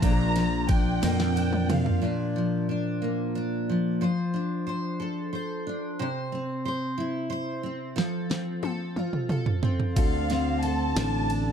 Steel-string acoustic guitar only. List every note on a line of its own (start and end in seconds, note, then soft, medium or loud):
0.00 2.00 A#2 medium
0.00 0.35 F3 medium
0.00 0.68 D4 medium
0.35 1.69 F3 medium
0.68 1.35 D4 medium
1.02 2.09 A#3 medium
1.36 2.02 D4 medium
1.69 2.35 F3 medium
2.02 4.01 A#2 medium
2.02 2.68 D4 medium
2.36 3.69 F3 medium
2.69 3.35 D4 medium
3.02 4.08 A#3 medium
3.35 4.08 D4 medium
3.69 4.00 F3 medium
4.01 5.99 F3 medium
4.01 4.66 C5 medium
4.34 5.66 D4 medium
4.67 5.32 C5 medium
5.00 6.05 A4 medium
5.33 6.00 C5 medium
5.67 6.06 D4 medium
5.99 7.97 C3 medium
5.99 6.65 C5 medium
6.32 7.63 C4 medium
6.65 7.29 C5 medium
6.98 8.04 E4 medium
7.30 7.96 C5 medium
7.63 8.29 C4 medium
7.96 9.96 F3 medium
7.96 8.62 A4 medium
8.30 9.62 C4 medium
8.63 9.29 A4 medium
8.97 10.03 F4 medium
9.30 9.96 A4 medium
9.63 10.30 C4 medium
9.96 11.52 D3 medium
9.96 10.63 A4 medium
10.31 11.52 C4 medium
10.64 11.30 A4 medium
10.97 11.52 D4 medium